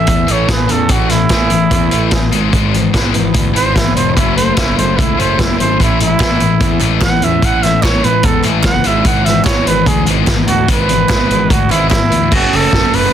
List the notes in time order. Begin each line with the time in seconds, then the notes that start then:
Already playing: A2 A3 G#4 E5
0.06 E2 A2 E3, kick, closed hi-hat
0.27 A1 A2 E3 A3, closed hi-hat
0.32 C#5
0.48 A1 A2 E3 G#4 B4, kick, snare, closed hi-hat
0.68 E2 A2 E3 C#4 A4, closed hi-hat
0.89 A1 A2 E3 A3 F#4, kick, closed hi-hat
1.09 A2 E3 A3 E4, snare, closed hi-hat
1.29 A1 A2 E3 A3 G#4, kick, snare, closed hi-hat
1.50 A1 A2 E3 A3, closed hi-hat
1.71 E2 A2 E3, kick, closed hi-hat
1.91 A1 A2 E3 A3, closed hi-hat
2.11 A1 A2 E3 G#4, kick, snare, closed hi-hat
2.31 G#1 G#2 E3 G#3, closed hi-hat
2.52 G#1 G#2 E3 G#3, kick, closed hi-hat
2.73 G#2 E3 B3, closed hi-hat
2.93 G#1 G#2 E3 G#3 E4, kick, snare, closed hi-hat
3.12 G#1 G#2 E3 B3, closed hi-hat
3.34 D2 G#2 E3 G#3, kick, closed hi-hat
3.53 G#1 G#2 E3 G#3 B3 C5, closed hi-hat
3.75 G#1 G#2 E3 E4, kick, snare, closed hi-hat
3.95 E1 G#2 E3 D4 C5, closed hi-hat
4.16 F#1 F#3 A3 C#4 E4, kick, closed hi-hat
4.36 F#3 A3 C5, closed hi-hat
4.56 F#1 F#3 A3 C#4 E4, kick, snare, closed hi-hat
4.77 F#1 F#3 A3 C5, closed hi-hat
4.97 C#2 F#3 A3 E4, kick, closed hi-hat
5.17 F#1 F#3 A3 C#4 C5, closed hi-hat
5.39 F#1 F#3 A3 E4, kick, snare, closed hi-hat
5.59 G#1 F#3 A3 C#4 C5, closed hi-hat
5.79 A1 A2 E3 A3 E4, kick, closed hi-hat
6.00 A2 E3 G#3 E4, closed hi-hat
6.19 A1 A2 E3 A3 E4, kick, snare, clap, closed hi-hat
6.40 A1 A2 E3 G#3, closed hi-hat
6.60 E2 A2 E3, kick, closed hi-hat
6.80 A1 A2 E3 G#3 A3, clap, closed hi-hat
7.01 A1 A2 E3 E4 F#5, kick, snare, clap, closed hi-hat
7.21 E2 A2 E3 C#4 E5, closed hi-hat
7.42 A1 A2 E3 A3 F#5, kick, closed hi-hat
7.62 A2 E3 G#3 E5, snare, closed hi-hat
7.82 A1 A2 E3 A3 E4 C#5, kick, snare, clap, closed hi-hat
8.04 A1 A2 E3 G#3 B4, closed hi-hat
8.23 E2 A2 E3 A4, kick, closed hi-hat
8.43 A1 A2 E3 G#3 A3, clap, closed hi-hat
8.64 F#1 A2 E3 E4 F#5, kick, snare, clap, closed hi-hat
8.84 G#1 G#2 E3 G#3 E5, closed hi-hat
9.04 G#1 G#2 E3 G#3 F#5, kick, closed hi-hat
9.25 G#2 E3 B3 E5, snare, closed hi-hat
9.45 G#1 G#2 E3 G#3 E4 C#5, kick, snare, clap, closed hi-hat
9.65 G#1 G#2 E3 B3 B4, closed hi-hat
9.86 D2 G#2 E3 G#3 G#4, kick, closed hi-hat
10.06 G#1 G#2 E3 G#3 B3, clap, closed hi-hat
10.27 G#1 G#2 E3 E4, kick, snare, clap, closed hi-hat
10.46 D2 G#2 E3 D4 F#4, closed hi-hat
10.66 G#1 G#2 E3 G#3, kick, closed hi-hat
10.71 B4
10.87 G#2 E3 B3, closed hi-hat
11.09 G#1 G#2 E3 G#3 E4, kick, snare, clap, closed hi-hat
11.29 G#1 G#2 E3 B3, closed hi-hat
11.50 D2 G#2 E3 G#3 F#4, kick, closed hi-hat
11.70 G#1 G#2 E3 G#3 B3 E4, clap, closed hi-hat
11.90 G#1 G#2 E3 E4, kick, snare, clap, closed hi-hat
12.10 D2 G#2 E3 D4, closed hi-hat
12.31 F#1 F#2 C#3 F#3 A3 C#4 G#4, kick, crash
12.35 F#4
12.53 F#1 A4, open hi-hat
12.73 F#1, kick, snare
12.93 F#1 B4, open hi-hat